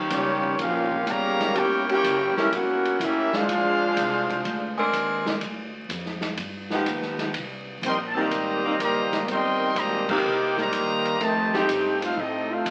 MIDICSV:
0, 0, Header, 1, 7, 480
1, 0, Start_track
1, 0, Tempo, 483092
1, 1539, Time_signature, 4, 2, 24, 8
1, 12621, End_track
2, 0, Start_track
2, 0, Title_t, "Trumpet section"
2, 0, Program_c, 0, 61
2, 118, Note_on_c, 0, 73, 102
2, 119, Note_on_c, 0, 58, 84
2, 120, Note_on_c, 0, 65, 86
2, 120, Note_on_c, 0, 67, 86
2, 556, Note_off_c, 0, 58, 0
2, 556, Note_off_c, 0, 65, 0
2, 556, Note_off_c, 0, 67, 0
2, 556, Note_off_c, 0, 73, 0
2, 598, Note_on_c, 0, 61, 87
2, 598, Note_on_c, 0, 67, 88
2, 599, Note_on_c, 0, 77, 90
2, 602, Note_on_c, 0, 70, 88
2, 1069, Note_off_c, 0, 61, 0
2, 1069, Note_off_c, 0, 67, 0
2, 1069, Note_off_c, 0, 77, 0
2, 1071, Note_off_c, 0, 70, 0
2, 1085, Note_on_c, 0, 67, 105
2, 1085, Note_on_c, 0, 73, 97
2, 1086, Note_on_c, 0, 77, 104
2, 1090, Note_on_c, 0, 82, 117
2, 1552, Note_off_c, 0, 67, 0
2, 1552, Note_off_c, 0, 73, 0
2, 1552, Note_off_c, 0, 77, 0
2, 1554, Note_off_c, 0, 82, 0
2, 1568, Note_on_c, 0, 73, 102
2, 1569, Note_on_c, 0, 70, 95
2, 1570, Note_on_c, 0, 64, 92
2, 1570, Note_on_c, 0, 79, 111
2, 1883, Note_off_c, 0, 73, 0
2, 1884, Note_off_c, 0, 64, 0
2, 1884, Note_off_c, 0, 70, 0
2, 1884, Note_off_c, 0, 79, 0
2, 1898, Note_on_c, 0, 73, 92
2, 1900, Note_on_c, 0, 70, 99
2, 1902, Note_on_c, 0, 64, 89
2, 1902, Note_on_c, 0, 79, 98
2, 2331, Note_off_c, 0, 73, 0
2, 2332, Note_off_c, 0, 70, 0
2, 2333, Note_off_c, 0, 64, 0
2, 2333, Note_off_c, 0, 79, 0
2, 2377, Note_on_c, 0, 61, 77
2, 2377, Note_on_c, 0, 67, 80
2, 2377, Note_on_c, 0, 70, 84
2, 2378, Note_on_c, 0, 76, 89
2, 2513, Note_off_c, 0, 61, 0
2, 2513, Note_off_c, 0, 67, 0
2, 2513, Note_off_c, 0, 70, 0
2, 2514, Note_off_c, 0, 76, 0
2, 2522, Note_on_c, 0, 64, 86
2, 2524, Note_on_c, 0, 70, 75
2, 2528, Note_on_c, 0, 73, 81
2, 2530, Note_on_c, 0, 78, 93
2, 2991, Note_off_c, 0, 64, 0
2, 2991, Note_off_c, 0, 70, 0
2, 2994, Note_off_c, 0, 73, 0
2, 2994, Note_off_c, 0, 78, 0
2, 3011, Note_on_c, 0, 61, 84
2, 3013, Note_on_c, 0, 70, 87
2, 3014, Note_on_c, 0, 67, 84
2, 3016, Note_on_c, 0, 76, 98
2, 3325, Note_off_c, 0, 61, 0
2, 3326, Note_off_c, 0, 70, 0
2, 3327, Note_off_c, 0, 67, 0
2, 3327, Note_off_c, 0, 76, 0
2, 3330, Note_on_c, 0, 68, 88
2, 3332, Note_on_c, 0, 62, 91
2, 3334, Note_on_c, 0, 72, 95
2, 3335, Note_on_c, 0, 77, 115
2, 4759, Note_off_c, 0, 68, 0
2, 4760, Note_off_c, 0, 62, 0
2, 4761, Note_off_c, 0, 72, 0
2, 4762, Note_off_c, 0, 77, 0
2, 7811, Note_on_c, 0, 79, 97
2, 7813, Note_on_c, 0, 75, 102
2, 7813, Note_on_c, 0, 84, 104
2, 7814, Note_on_c, 0, 70, 96
2, 7909, Note_off_c, 0, 79, 0
2, 7911, Note_off_c, 0, 70, 0
2, 7911, Note_off_c, 0, 75, 0
2, 7911, Note_off_c, 0, 84, 0
2, 8028, Note_on_c, 0, 81, 81
2, 8115, Note_off_c, 0, 81, 0
2, 8138, Note_on_c, 0, 67, 103
2, 8138, Note_on_c, 0, 72, 94
2, 8139, Note_on_c, 0, 82, 109
2, 8143, Note_on_c, 0, 75, 95
2, 8752, Note_off_c, 0, 67, 0
2, 8752, Note_off_c, 0, 72, 0
2, 8753, Note_off_c, 0, 82, 0
2, 8755, Note_off_c, 0, 75, 0
2, 8774, Note_on_c, 0, 67, 96
2, 8774, Note_on_c, 0, 82, 108
2, 8775, Note_on_c, 0, 72, 97
2, 8777, Note_on_c, 0, 75, 99
2, 9203, Note_off_c, 0, 67, 0
2, 9203, Note_off_c, 0, 82, 0
2, 9204, Note_off_c, 0, 72, 0
2, 9205, Note_off_c, 0, 75, 0
2, 9248, Note_on_c, 0, 75, 102
2, 9248, Note_on_c, 0, 84, 114
2, 9252, Note_on_c, 0, 70, 96
2, 9253, Note_on_c, 0, 79, 103
2, 9707, Note_off_c, 0, 75, 0
2, 9712, Note_off_c, 0, 84, 0
2, 9714, Note_off_c, 0, 70, 0
2, 9714, Note_on_c, 0, 72, 92
2, 9715, Note_off_c, 0, 79, 0
2, 9718, Note_on_c, 0, 67, 90
2, 9719, Note_on_c, 0, 75, 100
2, 9720, Note_on_c, 0, 82, 109
2, 10032, Note_off_c, 0, 72, 0
2, 10037, Note_off_c, 0, 67, 0
2, 10037, Note_off_c, 0, 75, 0
2, 10038, Note_off_c, 0, 82, 0
2, 10042, Note_on_c, 0, 63, 85
2, 10044, Note_on_c, 0, 72, 80
2, 10044, Note_on_c, 0, 79, 99
2, 10046, Note_on_c, 0, 70, 94
2, 10481, Note_off_c, 0, 63, 0
2, 10482, Note_off_c, 0, 72, 0
2, 10482, Note_off_c, 0, 79, 0
2, 10483, Note_off_c, 0, 70, 0
2, 10520, Note_on_c, 0, 75, 84
2, 10524, Note_on_c, 0, 72, 94
2, 10525, Note_on_c, 0, 67, 95
2, 10525, Note_on_c, 0, 82, 117
2, 11143, Note_off_c, 0, 75, 0
2, 11145, Note_off_c, 0, 67, 0
2, 11145, Note_off_c, 0, 72, 0
2, 11145, Note_off_c, 0, 82, 0
2, 11156, Note_on_c, 0, 67, 96
2, 11156, Note_on_c, 0, 75, 90
2, 11156, Note_on_c, 0, 81, 101
2, 11157, Note_on_c, 0, 72, 99
2, 11475, Note_off_c, 0, 75, 0
2, 11475, Note_off_c, 0, 81, 0
2, 11476, Note_off_c, 0, 67, 0
2, 11476, Note_off_c, 0, 72, 0
2, 11489, Note_on_c, 0, 63, 83
2, 11490, Note_on_c, 0, 69, 85
2, 11493, Note_on_c, 0, 72, 83
2, 11495, Note_on_c, 0, 79, 87
2, 11924, Note_off_c, 0, 63, 0
2, 11925, Note_off_c, 0, 69, 0
2, 11927, Note_off_c, 0, 72, 0
2, 11928, Note_off_c, 0, 79, 0
2, 11965, Note_on_c, 0, 69, 76
2, 11965, Note_on_c, 0, 72, 75
2, 11967, Note_on_c, 0, 63, 72
2, 11968, Note_on_c, 0, 77, 89
2, 12105, Note_off_c, 0, 69, 0
2, 12105, Note_off_c, 0, 72, 0
2, 12106, Note_off_c, 0, 63, 0
2, 12107, Note_off_c, 0, 77, 0
2, 12114, Note_on_c, 0, 67, 75
2, 12115, Note_on_c, 0, 60, 70
2, 12120, Note_on_c, 0, 75, 85
2, 12122, Note_on_c, 0, 69, 77
2, 12435, Note_off_c, 0, 60, 0
2, 12435, Note_off_c, 0, 67, 0
2, 12435, Note_off_c, 0, 69, 0
2, 12438, Note_off_c, 0, 75, 0
2, 12446, Note_on_c, 0, 72, 78
2, 12446, Note_on_c, 0, 77, 96
2, 12447, Note_on_c, 0, 69, 75
2, 12451, Note_on_c, 0, 63, 74
2, 12621, Note_off_c, 0, 63, 0
2, 12621, Note_off_c, 0, 69, 0
2, 12621, Note_off_c, 0, 72, 0
2, 12621, Note_off_c, 0, 77, 0
2, 12621, End_track
3, 0, Start_track
3, 0, Title_t, "Saxophone section"
3, 0, Program_c, 1, 65
3, 0, Note_on_c, 1, 53, 96
3, 0, Note_on_c, 1, 61, 99
3, 0, Note_on_c, 1, 63, 93
3, 0, Note_on_c, 1, 67, 118
3, 971, Note_off_c, 1, 53, 0
3, 973, Note_off_c, 1, 61, 0
3, 973, Note_off_c, 1, 63, 0
3, 976, Note_off_c, 1, 67, 0
3, 2350, Note_on_c, 1, 55, 97
3, 2350, Note_on_c, 1, 61, 86
3, 2352, Note_on_c, 1, 70, 116
3, 2354, Note_on_c, 1, 64, 92
3, 2451, Note_off_c, 1, 55, 0
3, 2451, Note_off_c, 1, 61, 0
3, 2452, Note_off_c, 1, 70, 0
3, 2454, Note_off_c, 1, 64, 0
3, 4741, Note_on_c, 1, 60, 108
3, 4744, Note_on_c, 1, 70, 127
3, 4745, Note_on_c, 1, 62, 106
3, 4747, Note_on_c, 1, 56, 120
3, 5345, Note_off_c, 1, 60, 0
3, 5346, Note_off_c, 1, 70, 0
3, 5347, Note_off_c, 1, 62, 0
3, 5348, Note_off_c, 1, 56, 0
3, 6673, Note_on_c, 1, 53, 112
3, 6673, Note_on_c, 1, 59, 104
3, 6676, Note_on_c, 1, 63, 102
3, 6678, Note_on_c, 1, 67, 127
3, 7270, Note_off_c, 1, 53, 0
3, 7270, Note_off_c, 1, 59, 0
3, 7272, Note_off_c, 1, 63, 0
3, 7273, Note_off_c, 1, 67, 0
3, 8099, Note_on_c, 1, 67, 116
3, 8100, Note_on_c, 1, 60, 98
3, 8101, Note_on_c, 1, 51, 109
3, 8102, Note_on_c, 1, 58, 90
3, 8550, Note_off_c, 1, 60, 0
3, 8550, Note_off_c, 1, 67, 0
3, 8551, Note_off_c, 1, 51, 0
3, 8551, Note_off_c, 1, 58, 0
3, 8588, Note_on_c, 1, 63, 114
3, 8590, Note_on_c, 1, 58, 92
3, 8591, Note_on_c, 1, 51, 96
3, 8593, Note_on_c, 1, 60, 95
3, 8689, Note_off_c, 1, 63, 0
3, 8690, Note_off_c, 1, 58, 0
3, 8691, Note_off_c, 1, 51, 0
3, 8692, Note_off_c, 1, 60, 0
3, 10025, Note_on_c, 1, 51, 113
3, 10027, Note_on_c, 1, 60, 103
3, 10031, Note_on_c, 1, 58, 104
3, 10031, Note_on_c, 1, 67, 107
3, 10127, Note_off_c, 1, 51, 0
3, 10128, Note_off_c, 1, 60, 0
3, 10131, Note_off_c, 1, 58, 0
3, 10131, Note_off_c, 1, 67, 0
3, 11464, Note_on_c, 1, 57, 86
3, 11466, Note_on_c, 1, 53, 99
3, 11467, Note_on_c, 1, 63, 86
3, 11469, Note_on_c, 1, 67, 114
3, 12065, Note_off_c, 1, 57, 0
3, 12066, Note_off_c, 1, 53, 0
3, 12066, Note_off_c, 1, 63, 0
3, 12067, Note_off_c, 1, 67, 0
3, 12621, End_track
4, 0, Start_track
4, 0, Title_t, "Trombone section"
4, 0, Program_c, 2, 61
4, 96, Note_on_c, 2, 58, 77
4, 101, Note_on_c, 2, 55, 80
4, 103, Note_on_c, 2, 61, 78
4, 544, Note_off_c, 2, 58, 0
4, 547, Note_off_c, 2, 55, 0
4, 548, Note_off_c, 2, 61, 0
4, 579, Note_on_c, 2, 58, 86
4, 584, Note_on_c, 2, 61, 88
4, 584, Note_on_c, 2, 65, 92
4, 1056, Note_off_c, 2, 58, 0
4, 1062, Note_off_c, 2, 61, 0
4, 1062, Note_off_c, 2, 65, 0
4, 1064, Note_on_c, 2, 49, 105
4, 1064, Note_on_c, 2, 55, 100
4, 1068, Note_on_c, 2, 58, 97
4, 1541, Note_off_c, 2, 55, 0
4, 1542, Note_off_c, 2, 49, 0
4, 1543, Note_off_c, 2, 58, 0
4, 1553, Note_on_c, 2, 61, 86
4, 1554, Note_on_c, 2, 67, 98
4, 1555, Note_on_c, 2, 58, 101
4, 1862, Note_off_c, 2, 61, 0
4, 1864, Note_off_c, 2, 58, 0
4, 1868, Note_off_c, 2, 67, 0
4, 1874, Note_on_c, 2, 61, 96
4, 1876, Note_on_c, 2, 58, 88
4, 1880, Note_on_c, 2, 67, 101
4, 2318, Note_off_c, 2, 61, 0
4, 2319, Note_off_c, 2, 58, 0
4, 2321, Note_off_c, 2, 67, 0
4, 2361, Note_on_c, 2, 61, 82
4, 2361, Note_on_c, 2, 64, 82
4, 2367, Note_on_c, 2, 58, 76
4, 2502, Note_off_c, 2, 58, 0
4, 2505, Note_off_c, 2, 61, 0
4, 2505, Note_off_c, 2, 64, 0
4, 2514, Note_on_c, 2, 58, 86
4, 2516, Note_on_c, 2, 66, 91
4, 2518, Note_on_c, 2, 61, 89
4, 2984, Note_off_c, 2, 61, 0
4, 2987, Note_off_c, 2, 58, 0
4, 2987, Note_off_c, 2, 66, 0
4, 2996, Note_on_c, 2, 61, 83
4, 2997, Note_on_c, 2, 58, 88
4, 3000, Note_on_c, 2, 64, 80
4, 3317, Note_off_c, 2, 61, 0
4, 3318, Note_off_c, 2, 58, 0
4, 3319, Note_off_c, 2, 64, 0
4, 3323, Note_on_c, 2, 56, 90
4, 3324, Note_on_c, 2, 62, 97
4, 3331, Note_on_c, 2, 65, 104
4, 4756, Note_off_c, 2, 56, 0
4, 4756, Note_off_c, 2, 62, 0
4, 4760, Note_off_c, 2, 65, 0
4, 7801, Note_on_c, 2, 60, 83
4, 7803, Note_on_c, 2, 51, 77
4, 7803, Note_on_c, 2, 55, 84
4, 7901, Note_off_c, 2, 60, 0
4, 7902, Note_off_c, 2, 51, 0
4, 7902, Note_off_c, 2, 55, 0
4, 8133, Note_on_c, 2, 58, 92
4, 8134, Note_on_c, 2, 51, 93
4, 8136, Note_on_c, 2, 55, 89
4, 8735, Note_off_c, 2, 51, 0
4, 8737, Note_off_c, 2, 55, 0
4, 8739, Note_off_c, 2, 58, 0
4, 8747, Note_on_c, 2, 51, 92
4, 8749, Note_on_c, 2, 55, 93
4, 8751, Note_on_c, 2, 58, 91
4, 9189, Note_off_c, 2, 51, 0
4, 9189, Note_off_c, 2, 55, 0
4, 9191, Note_off_c, 2, 58, 0
4, 9220, Note_on_c, 2, 51, 95
4, 9222, Note_on_c, 2, 55, 99
4, 9225, Note_on_c, 2, 60, 90
4, 9694, Note_off_c, 2, 55, 0
4, 9695, Note_off_c, 2, 51, 0
4, 9700, Note_off_c, 2, 60, 0
4, 9704, Note_on_c, 2, 58, 79
4, 9706, Note_on_c, 2, 55, 80
4, 9707, Note_on_c, 2, 51, 87
4, 10020, Note_off_c, 2, 58, 0
4, 10028, Note_on_c, 2, 63, 84
4, 10030, Note_on_c, 2, 67, 90
4, 10031, Note_off_c, 2, 51, 0
4, 10031, Note_off_c, 2, 55, 0
4, 10032, Note_on_c, 2, 58, 88
4, 10473, Note_off_c, 2, 63, 0
4, 10474, Note_off_c, 2, 67, 0
4, 10476, Note_off_c, 2, 58, 0
4, 10504, Note_on_c, 2, 51, 102
4, 10508, Note_on_c, 2, 55, 96
4, 10511, Note_on_c, 2, 58, 102
4, 11128, Note_off_c, 2, 51, 0
4, 11137, Note_off_c, 2, 55, 0
4, 11138, Note_off_c, 2, 58, 0
4, 11140, Note_on_c, 2, 51, 101
4, 11142, Note_on_c, 2, 57, 92
4, 11145, Note_on_c, 2, 48, 85
4, 11461, Note_on_c, 2, 63, 87
4, 11462, Note_on_c, 2, 67, 85
4, 11463, Note_on_c, 2, 60, 87
4, 11468, Note_off_c, 2, 51, 0
4, 11469, Note_off_c, 2, 57, 0
4, 11470, Note_off_c, 2, 48, 0
4, 11909, Note_off_c, 2, 63, 0
4, 11910, Note_off_c, 2, 67, 0
4, 11911, Note_off_c, 2, 60, 0
4, 11943, Note_on_c, 2, 57, 71
4, 11946, Note_on_c, 2, 60, 76
4, 11946, Note_on_c, 2, 65, 73
4, 12078, Note_off_c, 2, 57, 0
4, 12081, Note_off_c, 2, 60, 0
4, 12090, Note_on_c, 2, 57, 79
4, 12091, Note_on_c, 2, 63, 76
4, 12093, Note_on_c, 2, 60, 85
4, 12096, Note_off_c, 2, 65, 0
4, 12408, Note_off_c, 2, 57, 0
4, 12412, Note_off_c, 2, 60, 0
4, 12420, Note_on_c, 2, 57, 86
4, 12423, Note_off_c, 2, 63, 0
4, 12423, Note_on_c, 2, 60, 88
4, 12424, Note_on_c, 2, 65, 86
4, 12621, Note_off_c, 2, 57, 0
4, 12621, Note_off_c, 2, 60, 0
4, 12621, Note_off_c, 2, 65, 0
4, 12621, End_track
5, 0, Start_track
5, 0, Title_t, "Upright bass"
5, 0, Program_c, 3, 32
5, 106, Note_on_c, 3, 37, 102
5, 568, Note_off_c, 3, 37, 0
5, 586, Note_on_c, 3, 34, 98
5, 1048, Note_off_c, 3, 34, 0
5, 1067, Note_on_c, 3, 31, 94
5, 1529, Note_off_c, 3, 31, 0
5, 1547, Note_on_c, 3, 28, 85
5, 2009, Note_off_c, 3, 28, 0
5, 2022, Note_on_c, 3, 30, 105
5, 2327, Note_off_c, 3, 30, 0
5, 2501, Note_on_c, 3, 31, 87
5, 2966, Note_off_c, 3, 31, 0
5, 2979, Note_on_c, 3, 33, 93
5, 3286, Note_off_c, 3, 33, 0
5, 3459, Note_on_c, 3, 34, 86
5, 3925, Note_off_c, 3, 34, 0
5, 3942, Note_on_c, 3, 36, 103
5, 4406, Note_off_c, 3, 36, 0
5, 4420, Note_on_c, 3, 38, 101
5, 4885, Note_off_c, 3, 38, 0
5, 4892, Note_on_c, 3, 39, 88
5, 5361, Note_off_c, 3, 39, 0
5, 5372, Note_on_c, 3, 38, 85
5, 5841, Note_off_c, 3, 38, 0
5, 5851, Note_on_c, 3, 41, 102
5, 6320, Note_off_c, 3, 41, 0
5, 6337, Note_on_c, 3, 43, 92
5, 6803, Note_off_c, 3, 43, 0
5, 6815, Note_on_c, 3, 39, 103
5, 7282, Note_off_c, 3, 39, 0
5, 7295, Note_on_c, 3, 36, 91
5, 7762, Note_off_c, 3, 36, 0
5, 7769, Note_on_c, 3, 34, 98
5, 8239, Note_off_c, 3, 34, 0
5, 8252, Note_on_c, 3, 32, 90
5, 8561, Note_off_c, 3, 32, 0
5, 8734, Note_on_c, 3, 30, 94
5, 9201, Note_off_c, 3, 30, 0
5, 9211, Note_on_c, 3, 31, 91
5, 9679, Note_off_c, 3, 31, 0
5, 9686, Note_on_c, 3, 32, 98
5, 10156, Note_off_c, 3, 32, 0
5, 10169, Note_on_c, 3, 36, 96
5, 10638, Note_off_c, 3, 36, 0
5, 10655, Note_on_c, 3, 39, 99
5, 11121, Note_off_c, 3, 39, 0
5, 11132, Note_on_c, 3, 41, 88
5, 11599, Note_off_c, 3, 41, 0
5, 11615, Note_on_c, 3, 43, 93
5, 12081, Note_off_c, 3, 43, 0
5, 12090, Note_on_c, 3, 45, 93
5, 12558, Note_off_c, 3, 45, 0
5, 12573, Note_on_c, 3, 48, 93
5, 12621, Note_off_c, 3, 48, 0
5, 12621, End_track
6, 0, Start_track
6, 0, Title_t, "Muted upright bass strokes"
6, 2344, Note_on_c, 9, 29, 45
6, 2444, Note_off_c, 9, 29, 0
6, 3308, Note_on_c, 9, 29, 45
6, 3407, Note_off_c, 9, 29, 0
6, 8583, Note_on_c, 9, 29, 45
6, 8682, Note_off_c, 9, 29, 0
6, 12621, End_track
7, 0, Start_track
7, 0, Title_t, "Drums"
7, 102, Note_on_c, 9, 44, 78
7, 102, Note_on_c, 9, 51, 87
7, 202, Note_off_c, 9, 44, 0
7, 202, Note_off_c, 9, 51, 0
7, 431, Note_on_c, 9, 36, 56
7, 530, Note_off_c, 9, 36, 0
7, 584, Note_on_c, 9, 51, 76
7, 683, Note_off_c, 9, 51, 0
7, 911, Note_on_c, 9, 36, 56
7, 1011, Note_off_c, 9, 36, 0
7, 1061, Note_on_c, 9, 44, 68
7, 1061, Note_on_c, 9, 51, 74
7, 1161, Note_off_c, 9, 44, 0
7, 1161, Note_off_c, 9, 51, 0
7, 1394, Note_on_c, 9, 38, 53
7, 1396, Note_on_c, 9, 51, 50
7, 1494, Note_off_c, 9, 38, 0
7, 1496, Note_off_c, 9, 51, 0
7, 1545, Note_on_c, 9, 51, 77
7, 1644, Note_off_c, 9, 51, 0
7, 1880, Note_on_c, 9, 51, 56
7, 1979, Note_off_c, 9, 51, 0
7, 2030, Note_on_c, 9, 44, 76
7, 2030, Note_on_c, 9, 51, 95
7, 2130, Note_off_c, 9, 44, 0
7, 2130, Note_off_c, 9, 51, 0
7, 2355, Note_on_c, 9, 38, 53
7, 2455, Note_off_c, 9, 38, 0
7, 2509, Note_on_c, 9, 51, 72
7, 2608, Note_off_c, 9, 51, 0
7, 2835, Note_on_c, 9, 51, 56
7, 2935, Note_off_c, 9, 51, 0
7, 2987, Note_on_c, 9, 44, 66
7, 2987, Note_on_c, 9, 51, 80
7, 3086, Note_off_c, 9, 44, 0
7, 3086, Note_off_c, 9, 51, 0
7, 3309, Note_on_c, 9, 38, 69
7, 3408, Note_off_c, 9, 38, 0
7, 3466, Note_on_c, 9, 51, 82
7, 3565, Note_off_c, 9, 51, 0
7, 3941, Note_on_c, 9, 44, 79
7, 3941, Note_on_c, 9, 51, 99
7, 4040, Note_off_c, 9, 44, 0
7, 4040, Note_off_c, 9, 51, 0
7, 4268, Note_on_c, 9, 36, 54
7, 4275, Note_on_c, 9, 51, 50
7, 4367, Note_off_c, 9, 36, 0
7, 4374, Note_off_c, 9, 51, 0
7, 4422, Note_on_c, 9, 51, 71
7, 4522, Note_off_c, 9, 51, 0
7, 4901, Note_on_c, 9, 44, 55
7, 4901, Note_on_c, 9, 51, 74
7, 5000, Note_off_c, 9, 44, 0
7, 5000, Note_off_c, 9, 51, 0
7, 5228, Note_on_c, 9, 38, 61
7, 5327, Note_off_c, 9, 38, 0
7, 5375, Note_on_c, 9, 51, 67
7, 5475, Note_off_c, 9, 51, 0
7, 5858, Note_on_c, 9, 44, 74
7, 5858, Note_on_c, 9, 51, 83
7, 5957, Note_off_c, 9, 44, 0
7, 5957, Note_off_c, 9, 51, 0
7, 6019, Note_on_c, 9, 38, 33
7, 6118, Note_off_c, 9, 38, 0
7, 6170, Note_on_c, 9, 38, 50
7, 6185, Note_on_c, 9, 51, 56
7, 6269, Note_off_c, 9, 38, 0
7, 6285, Note_off_c, 9, 51, 0
7, 6332, Note_on_c, 9, 51, 77
7, 6432, Note_off_c, 9, 51, 0
7, 6661, Note_on_c, 9, 38, 54
7, 6760, Note_off_c, 9, 38, 0
7, 6817, Note_on_c, 9, 44, 59
7, 6817, Note_on_c, 9, 51, 83
7, 6916, Note_off_c, 9, 44, 0
7, 6916, Note_off_c, 9, 51, 0
7, 6977, Note_on_c, 9, 38, 31
7, 7076, Note_off_c, 9, 38, 0
7, 7134, Note_on_c, 9, 38, 46
7, 7144, Note_on_c, 9, 51, 51
7, 7234, Note_off_c, 9, 38, 0
7, 7244, Note_off_c, 9, 51, 0
7, 7292, Note_on_c, 9, 51, 80
7, 7391, Note_off_c, 9, 51, 0
7, 7779, Note_on_c, 9, 44, 70
7, 7779, Note_on_c, 9, 51, 90
7, 7879, Note_off_c, 9, 44, 0
7, 7879, Note_off_c, 9, 51, 0
7, 8260, Note_on_c, 9, 51, 75
7, 8359, Note_off_c, 9, 51, 0
7, 8743, Note_on_c, 9, 44, 68
7, 8743, Note_on_c, 9, 51, 81
7, 8843, Note_off_c, 9, 44, 0
7, 8843, Note_off_c, 9, 51, 0
7, 9067, Note_on_c, 9, 38, 50
7, 9069, Note_on_c, 9, 51, 53
7, 9167, Note_off_c, 9, 38, 0
7, 9169, Note_off_c, 9, 51, 0
7, 9221, Note_on_c, 9, 51, 72
7, 9321, Note_off_c, 9, 51, 0
7, 9698, Note_on_c, 9, 44, 65
7, 9698, Note_on_c, 9, 51, 87
7, 9797, Note_off_c, 9, 44, 0
7, 9797, Note_off_c, 9, 51, 0
7, 10024, Note_on_c, 9, 49, 87
7, 10027, Note_on_c, 9, 36, 92
7, 10123, Note_off_c, 9, 49, 0
7, 10126, Note_off_c, 9, 36, 0
7, 10506, Note_on_c, 9, 38, 38
7, 10605, Note_off_c, 9, 38, 0
7, 10657, Note_on_c, 9, 44, 60
7, 10657, Note_on_c, 9, 51, 85
7, 10756, Note_off_c, 9, 44, 0
7, 10756, Note_off_c, 9, 51, 0
7, 10983, Note_on_c, 9, 51, 51
7, 11082, Note_off_c, 9, 51, 0
7, 11134, Note_on_c, 9, 51, 72
7, 11234, Note_off_c, 9, 51, 0
7, 11463, Note_on_c, 9, 38, 49
7, 11562, Note_off_c, 9, 38, 0
7, 11612, Note_on_c, 9, 44, 74
7, 11612, Note_on_c, 9, 51, 91
7, 11711, Note_off_c, 9, 44, 0
7, 11711, Note_off_c, 9, 51, 0
7, 11944, Note_on_c, 9, 51, 78
7, 12043, Note_off_c, 9, 51, 0
7, 12577, Note_on_c, 9, 44, 64
7, 12577, Note_on_c, 9, 51, 81
7, 12621, Note_off_c, 9, 44, 0
7, 12621, Note_off_c, 9, 51, 0
7, 12621, End_track
0, 0, End_of_file